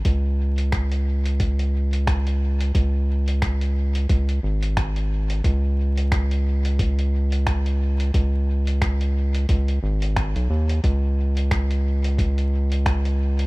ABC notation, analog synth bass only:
X:1
M:4/4
L:1/16
Q:"Swing 16ths" 1/4=89
K:G#phr
V:1 name="Analog synth bass" clef=bass
C,,16 | C,,8 C,,2 G,,,6 | C,,16 | C,,8 C,,2 G,,,3 B,,, D,,2 |
C,,16 |]